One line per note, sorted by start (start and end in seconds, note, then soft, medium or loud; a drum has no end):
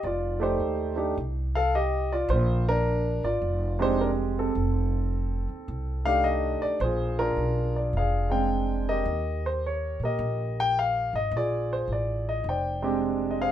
0.03 0.56 F1 medium
0.03 0.40 F4 medium
0.03 0.39 D5 medium
0.40 0.93 A3 medium
0.40 0.94 D#4 medium
0.40 0.94 G4 medium
0.40 0.95 C5 medium
0.40 0.93 D5 medium
0.60 1.12 D#2 medium
0.96 1.14 A3 medium
0.96 1.14 D4 medium
0.96 1.14 D#4 medium
0.96 1.15 G4 medium
1.17 2.26 C2 medium
1.55 1.73 A4 medium
1.55 1.74 F5 loud
1.75 2.09 G4 medium
1.75 2.13 D#5 medium
2.12 2.29 F4 medium
2.12 2.31 D5 medium
2.29 3.19 A#1 loud
2.29 2.65 F4 medium
2.29 2.68 C5 medium
2.69 3.20 D4 medium
2.69 3.26 A#4 loud
3.23 3.41 G#1 medium
3.23 3.77 F4 medium
3.23 3.76 D5 medium
3.42 4.51 F1 medium
3.79 4.51 G#3 medium
3.79 4.38 C4 medium
3.79 4.01 D4 medium
3.79 3.99 D#4 medium
3.79 4.52 G4 medium
3.79 4.00 C5 loud
4.01 4.10 D4 medium
4.01 4.09 A#4 medium
4.39 6.22 C4 medium
4.39 6.22 A4 medium
4.55 5.45 F1 medium
5.48 5.66 D#2 medium
5.68 6.58 C2 medium
6.05 6.77 A3 medium
6.05 6.77 D4 medium
6.05 6.77 D#4 medium
6.05 6.78 G4 medium
6.05 6.25 F5 loud
6.24 6.63 D#5 medium
6.62 6.79 D5 medium
6.62 muted upright bass stroke soft
6.80 7.33 A#1 medium
6.80 7.91 G#4 medium
6.80 7.19 C5 medium
6.84 7.18 F4 medium
7.19 8.28 D4 medium
7.19 8.28 F4 medium
7.19 7.77 A#4 loud
7.36 7.89 B1 medium
7.76 7.93 D5 medium
7.93 9.02 F1 medium
7.93 8.48 F5 medium
7.98 9.05 G#4 medium
7.98 9.04 D5 medium
8.30 9.02 G#3 medium
8.30 9.02 C4 medium
8.30 9.03 D4 medium
8.30 9.03 G5 medium
8.89 9.97 G4 medium
8.89 9.97 A#4 medium
8.89 9.46 D#5 medium
9.05 9.96 D#2 medium
9.46 9.62 C5 medium
9.66 10.00 C#5 medium
10.00 10.17 A#2 medium
10.00 11.11 G4 medium
10.00 11.11 A#4 medium
10.05 10.61 D#5 medium
10.19 11.09 A#1 medium
10.60 10.78 G5 loud
10.79 11.12 F5 loud
11.13 11.30 G#1 medium
11.13 11.34 D#5 medium
11.31 11.84 A#1 medium
11.36 12.43 F4 medium
11.36 12.43 G#4 medium
11.36 11.73 D5 medium
11.73 11.89 C5 medium
11.88 12.40 A1 medium
11.92 12.29 D5 medium
12.29 12.45 D#5 medium
12.44 13.52 F1 medium
12.49 13.41 C5 medium
12.49 13.52 D5 medium
12.49 12.99 G5 medium
12.82 13.52 G#3 medium
12.82 13.52 C4 medium
12.82 13.52 D4 medium
12.82 13.52 G4 medium
13.31 13.39 D#5 medium
13.41 13.52 G#4 medium
13.41 13.52 C5 medium
13.41 13.52 F5 loud